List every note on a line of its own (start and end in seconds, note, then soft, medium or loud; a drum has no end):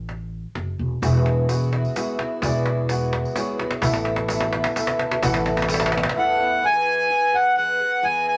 0.00 0.43 A1 medium
0.09 cajon slap medium
0.55 0.77 F#1 medium
0.55 cajon slap medium
0.79 1.01 E1 medium
1.02 1.83 E1 medium
1.02 2.40 E2 medium
1.02 1.55 E3 medium
1.02 2.39 E3 medium
1.02 1.48 G#3 medium
1.02 1.34 B3 medium
1.02 1.49 B3 medium
1.02 1.51 E4 medium
1.02 1.34 F#4 medium
1.02 1.50 F#4 medium
1.02 1.34 G#4 medium
1.02 1.35 E5 medium
1.02 cajon bass loud
1.02 cajon slap medium
1.02 tambourine medium
1.26 cajon slap medium
1.49 1.73 G#3 medium
1.49 1.81 B3 medium
1.49 1.73 B3 medium
1.49 1.72 E4 medium
1.49 1.81 F#4 medium
1.49 1.70 F#4 medium
1.49 1.81 G#4 medium
1.49 1.81 B4 medium
1.49 cajon slap medium
1.49 tambourine medium
1.72 1.95 B3 soft
1.72 1.96 E4 soft
1.72 1.96 F#4 soft
1.72 cajon slap medium
1.85 tambourine soft
1.96 2.20 G#3 medium
1.96 2.27 B3 medium
1.96 2.20 B3 medium
1.96 2.20 E4 medium
1.96 2.28 F#4 medium
1.96 2.18 F#4 medium
1.96 2.28 G#4 medium
1.96 2.28 E5 medium
1.96 cajon slap medium
1.96 tambourine medium
2.19 2.42 B3 soft
2.19 2.42 E4 soft
2.19 2.43 F#4 medium
2.19 cajon slap medium
2.42 3.23 E1 medium
2.42 3.80 E2 medium
2.42 2.95 E3 medium
2.42 3.79 E3 medium
2.42 2.88 G#3 medium
2.42 2.74 B3 medium
2.42 2.91 B3 medium
2.42 2.91 E4 medium
2.42 2.74 F#4 medium
2.42 2.91 F#4 medium
2.42 2.75 G#4 medium
2.42 2.75 D5 medium
2.42 cajon bass loud
2.42 cajon slap medium
2.42 tambourine medium
2.66 cajon slap medium
2.89 3.35 G#3 medium
2.89 3.21 B3 medium
2.89 3.36 B3 medium
2.89 3.37 E4 medium
2.89 3.21 F#4 medium
2.89 3.37 F#4 medium
2.89 3.21 G#4 medium
2.89 3.22 F#5 medium
2.89 cajon slap medium
2.89 tambourine medium
3.13 cajon slap medium
3.25 tambourine soft
3.36 3.60 G#3 medium
3.36 3.60 B3 medium
3.36 3.68 B3 medium
3.36 3.59 E4 medium
3.36 3.68 F#4 medium
3.36 3.58 F#4 medium
3.36 3.68 G#4 medium
3.36 3.69 C#5 medium
3.36 cajon slap medium
3.36 tambourine medium
3.59 3.81 B3 soft
3.59 3.82 E4 soft
3.59 3.83 F#4 medium
3.59 cajon slap medium
3.71 cajon slap medium
3.82 4.63 A1 medium
3.82 5.19 A1 medium
3.82 5.19 A2 medium
3.82 4.28 A3 medium
3.82 4.14 B3 medium
3.82 4.30 B3 medium
3.82 4.14 E4 medium
3.82 4.31 E4 medium
3.82 4.14 A4 medium
3.82 4.30 A4 medium
3.82 4.15 E5 medium
3.82 cajon bass loud
3.82 cajon slap loud
3.82 tambourine medium
3.94 cajon slap medium
4.05 cajon slap loud
4.16 cajon slap loud
4.29 4.53 A3 medium
4.29 4.61 B3 medium
4.29 4.54 B3 medium
4.29 4.61 E4 medium
4.29 4.53 E4 medium
4.29 4.61 A4 medium
4.29 4.51 A4 medium
4.29 4.61 E5 medium
4.29 cajon slap loud
4.29 tambourine loud
4.40 cajon slap loud
4.53 4.75 B3 soft
4.53 4.76 E4 soft
4.53 4.76 A4 medium
4.53 cajon slap loud
4.64 cajon slap loud
4.64 tambourine soft
4.75 5.22 A3 medium
4.75 5.07 B3 medium
4.75 5.24 B3 medium
4.75 5.08 E4 medium
4.75 5.24 E4 medium
4.75 5.08 A4 medium
4.75 5.24 A4 medium
4.75 5.08 E5 medium
4.75 cajon slap loud
4.75 tambourine loud
4.87 cajon slap loud
4.99 cajon slap loud
5.11 cajon slap loud
5.23 6.03 A1 loud
5.23 6.59 A1 medium
5.23 6.59 A2 medium
5.23 5.68 A3 medium
5.23 5.54 B3 medium
5.23 5.69 B3 medium
5.23 5.54 E4 medium
5.23 5.70 E4 medium
5.23 5.54 A4 medium
5.23 5.70 A4 medium
5.23 5.54 F#5 loud
5.23 cajon bass loud
5.23 cajon slap loud
5.23 tambourine loud
5.34 cajon slap loud
5.46 cajon slap loud
5.46 tambourine soft
5.57 cajon slap loud
5.57 tambourine soft
5.62 cajon slap loud
5.69 5.93 A3 medium
5.69 6.01 B3 medium
5.69 5.93 B3 medium
5.69 6.01 E4 medium
5.69 5.93 E4 medium
5.69 6.01 A4 medium
5.69 5.91 A4 medium
5.69 6.01 E5 medium
5.69 cajon slap loud
5.69 tambourine loud
5.74 cajon slap loud
5.80 cajon slap loud
5.86 cajon slap loud
5.92 6.16 B3 soft
5.92 6.16 E4 medium
5.92 6.16 A4 medium
5.92 cajon slap loud
5.98 cajon slap loud
6.03 cajon slap loud
6.09 cajon slap loud
6.16 6.40 A3 medium
6.16 6.47 B3 medium
6.16 6.39 B3 medium
6.16 6.47 E4 medium
6.16 6.38 E4 medium
6.16 6.48 A4 medium
6.16 6.37 A4 medium
6.16 6.48 E5 medium
6.16 6.66 F#5 medium
6.38 6.62 B3 soft
6.38 6.63 E4 medium
6.38 6.62 A4 medium
6.62 7.08 E3 medium
6.62 7.10 B3 medium
6.62 7.09 F#4 medium
6.62 7.10 G#4 medium
6.62 7.36 G#5 loud
7.09 7.33 E3 medium
7.09 7.33 B3 medium
7.09 7.33 F#4 medium
7.09 7.31 G#4 medium
7.32 7.56 B3 soft
7.32 7.57 F#4 soft
7.32 7.56 G#4 medium
7.32 7.56 F#5 medium
7.56 7.80 E3 medium
7.56 7.80 B3 medium
7.56 7.79 F#4 medium
7.56 7.78 G#4 medium
7.56 8.05 F#5 loud
7.80 8.02 B3 soft
7.80 8.03 F#4 soft
7.80 8.03 G#4 soft
8.02 8.37 E3 medium
8.02 8.37 B3 medium
8.02 8.37 F#4 medium
8.02 8.37 G#4 medium
8.02 8.26 G#5 medium
8.28 8.37 G#5 medium